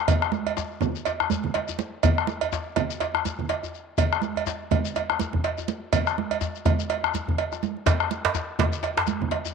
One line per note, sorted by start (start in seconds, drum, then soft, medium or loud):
0.08 bombo low loud
0.08 cowbell medium
0.08 djembe slap medium
0.08 djembe tone medium
0.08 djembe bass medium
0.08 low conga medium
0.08 shekere medium
0.22 bombo rim medium
0.22 djembe slap soft
0.32 high conga medium
0.32 shekere soft
0.46 cowbell medium
0.46 djembe slap soft
0.46 djembe tone soft
0.57 bombo rim soft
0.57 djembe slap medium
0.57 shekere medium
0.71 djembe slap soft
0.81 bombo rim soft
0.81 bombo low loud
0.81 djembe tone medium
0.81 low conga medium
0.81 djembe bass medium
0.81 shekere soft
0.95 shekere soft
1.05 cowbell soft
1.05 djembe slap medium
1.05 shekere soft
1.20 bombo rim medium
1.20 djembe slap soft
1.20 djembe tone medium
1.30 high conga medium
1.30 shekere medium
1.44 bombo low medium
1.44 djembe slap soft
1.44 low conga medium
1.44 djembe bass medium
1.54 cowbell medium
1.54 djembe slap medium
1.68 djembe tone medium
1.68 shekere soft
1.79 high conga medium
1.79 shekere soft
2.03 bombo low medium
2.03 cowbell medium
2.03 djembe slap medium
2.03 djembe tone medium
2.03 djembe bass medium
2.03 low conga medium
2.03 shekere medium
2.18 bombo rim medium
2.27 high conga medium
2.27 shekere soft
2.41 cowbell medium
2.41 djembe slap soft
2.41 djembe tone medium
2.52 bombo rim soft
2.52 djembe slap medium
2.52 shekere medium
2.66 djembe slap soft
2.76 bombo rim soft
2.76 bombo low medium
2.76 cowbell medium
2.76 high conga medium
2.76 djembe tone medium
2.76 low conga medium
2.76 djembe bass medium
2.76 shekere soft
2.90 shekere soft
3.00 cowbell soft
3.00 djembe slap medium
3.00 shekere soft
3.14 bombo rim medium
3.14 djembe slap soft
3.14 djembe tone medium
3.25 djembe slap soft
3.25 high conga medium
3.25 shekere medium
3.39 bombo low medium
3.39 djembe slap soft
3.39 djembe bass medium
3.39 low conga medium
3.49 cowbell soft
3.49 djembe slap medium
3.63 djembe tone medium
3.63 shekere soft
3.74 shekere soft
3.98 bombo low medium
3.98 cowbell medium
3.98 djembe slap medium
3.98 djembe tone medium
3.98 low conga medium
3.98 djembe bass medium
3.98 shekere medium
4.12 bombo rim medium
4.12 djembe slap soft
4.22 high conga medium
4.22 shekere soft
4.36 cowbell soft
4.36 djembe slap soft
4.36 djembe tone medium
4.47 bombo rim soft
4.47 djembe slap medium
4.47 shekere medium
4.61 djembe slap soft
4.71 bombo rim soft
4.71 bombo low loud
4.71 cowbell medium
4.71 high conga medium
4.71 djembe tone medium
4.71 low conga medium
4.71 djembe bass medium
4.71 shekere soft
4.85 shekere soft
4.95 cowbell soft
4.95 djembe slap medium
4.95 shekere soft
5.10 bombo rim medium
5.10 djembe slap soft
5.10 djembe tone medium
5.19 djembe slap soft
5.19 high conga medium
5.19 shekere medium
5.33 bombo low medium
5.33 djembe slap soft
5.33 low conga medium
5.33 djembe bass medium
5.44 cowbell medium
5.44 djembe slap medium
5.58 djembe tone medium
5.58 shekere soft
5.68 high conga medium
5.68 shekere soft
5.93 bombo low loud
5.93 cowbell medium
5.93 djembe slap medium
5.93 djembe tone medium
5.93 high conga soft
5.93 djembe bass medium
5.93 low conga medium
5.93 shekere medium
6.06 bombo rim medium
6.06 djembe slap soft
6.06 shekere soft
6.18 high conga medium
6.31 cowbell medium
6.31 djembe slap soft
6.31 djembe tone soft
6.41 djembe slap medium
6.41 shekere medium
6.55 shekere soft
6.65 bombo rim soft
6.65 bombo low loud
6.65 cowbell medium
6.65 djembe slap soft
6.65 djembe tone medium
6.65 high conga medium
6.65 djembe bass medium
6.65 low conga medium
6.65 shekere soft
6.79 shekere soft
6.90 cowbell medium
6.90 djembe slap medium
7.04 bombo rim medium
7.04 djembe slap soft
7.04 djembe tone medium
7.04 high conga soft
7.14 high conga medium
7.14 shekere medium
7.28 bombo low medium
7.28 djembe slap soft
7.28 djembe bass soft
7.28 low conga medium
7.38 cowbell medium
7.38 djembe slap medium
7.52 bombo rim soft
7.52 djembe tone soft
7.52 high conga soft
7.52 shekere soft
7.63 high conga medium
7.63 shekere soft
7.76 djembe slap soft
7.76 high conga soft
7.86 bombo low medium
7.86 cowbell medium
7.86 djembe slap medium
7.86 djembe slap loud
7.86 djembe tone medium
7.86 djembe bass medium
7.86 low conga medium
7.86 shekere medium
8.00 bombo rim medium
8.00 djembe slap soft
8.11 high conga medium
8.11 shekere soft
8.25 cowbell soft
8.25 djembe slap soft
8.25 djembe slap loud
8.25 djembe tone soft
8.35 bombo rim soft
8.35 djembe slap medium
8.35 shekere medium
8.48 djembe slap soft
8.59 bombo rim soft
8.59 bombo low medium
8.59 cowbell medium
8.59 djembe slap loud
8.59 djembe tone medium
8.59 high conga medium
8.59 djembe bass medium
8.59 low conga medium
8.59 shekere soft
8.73 shekere soft
8.83 cowbell soft
8.83 djembe slap medium
8.83 shekere soft
8.97 bombo rim medium
8.97 djembe slap soft
8.97 djembe slap loud
8.97 djembe tone medium
9.07 high conga medium
9.07 shekere medium
9.21 bombo low medium
9.21 djembe slap soft
9.21 djembe bass medium
9.21 low conga medium
9.31 cowbell soft
9.31 djembe slap medium
9.45 djembe tone medium
9.45 shekere soft